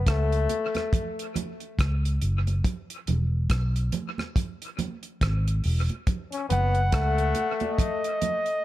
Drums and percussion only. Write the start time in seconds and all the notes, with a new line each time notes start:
0.07 kick, cross-stick, closed hi-hat
0.32 closed hi-hat
0.49 closed hi-hat, high conga
0.75 cross-stick, closed hi-hat, high conga
0.93 kick, closed hi-hat, low conga
1.19 closed hi-hat
1.36 closed hi-hat, high conga, low conga
1.60 closed hi-hat
1.79 kick, cross-stick, closed hi-hat
2.05 closed hi-hat
2.22 closed hi-hat
2.47 closed hi-hat, high conga
2.64 kick, closed hi-hat, low conga
2.90 closed hi-hat
3.07 closed hi-hat, low conga
3.50 kick, cross-stick, closed hi-hat
3.76 closed hi-hat
3.92 closed hi-hat, high conga, low conga
4.18 cross-stick, high conga
4.36 kick, closed hi-hat, low conga
4.62 closed hi-hat
4.79 closed hi-hat, high conga, low conga
5.03 closed hi-hat
5.21 kick, cross-stick, closed hi-hat
5.48 closed hi-hat
5.64 open hi-hat
5.89 closed hi-hat, high conga
6.07 kick, closed hi-hat, low conga
6.32 closed hi-hat
6.50 closed hi-hat, low conga
6.75 closed hi-hat
6.92 kick, cross-stick, closed hi-hat
7.18 closed hi-hat
7.35 closed hi-hat, high conga
7.60 closed hi-hat, high conga
7.79 kick, closed hi-hat, low conga
8.04 closed hi-hat
8.22 closed hi-hat, high conga, low conga
8.46 closed hi-hat